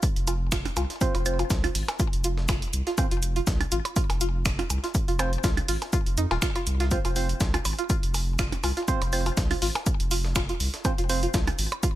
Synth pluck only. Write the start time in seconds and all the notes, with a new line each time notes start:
0.27 F4
0.52 F4
0.77 F4
1.15 F4
1.39 F4
1.64 F4
2.00 F4
2.24 F4
2.49 F4
2.87 F4
3.11 F4
3.36 F4
3.72 F4
3.96 F4
4.21 F4
4.59 F4
4.84 F4
5.08 F4
5.44 F4
5.69 F4
5.93 F4
6.18 D#4
6.31 F4
6.42 F4
6.56 F4
6.80 F4
6.92 F4
7.05 F4
7.54 F4
7.79 F4
7.90 F4
8.39 F4
8.64 F4
8.77 F4
9.26 F4
9.51 F4
9.62 F4
10.11 F4
10.36 F4
10.49 F4
10.98 F4
11.23 F4
11.34 F4
11.83 F4